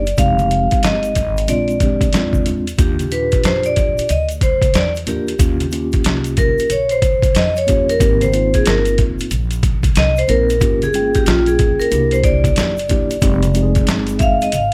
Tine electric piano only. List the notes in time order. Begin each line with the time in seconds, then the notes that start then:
0.17 G#3 C4 D#4 G4
1.48 G#3 C4 D4 F4
1.80 G#3 C4 D4 G4
2.13 G#3 C4 D4 F4
2.78 A#3 D4 F4 G4
3.11 A#2 D4 F4 G4
5.07 A#3 D4 F4 A#4
5.39 A#3 C#4 F4 G4
5.71 A#3 C#4 F4 G4
7.67 A#3 C#4 F4 G4
7.99 A#3 C4 D#4 G4
8.32 A#3 C4 D#4 F4
10.28 A#3 C4 D#4 A#4
10.60 A#3 C#4 F4 G4
10.93 G#3 C#4 F4 G5
11.00 A#3
11.91 A#3 D4 E4 G4
12.89 A#3 D4 E4 G4
13.21 G#3 C4 D#4 G4
13.54 G#3 C4 D#4 G4
13.63 G#4